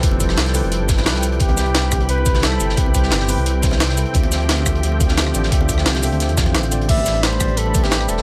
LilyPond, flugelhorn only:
\new Staff \with { instrumentName = "Flugelhorn" } { \time 4/4 \key d \dorian \tempo 4 = 175 r1 | g'2 b'4 a'4 | g'2. r4 | r1 |
r1 | e''4 c''4 a'8. g'8. a'8 | }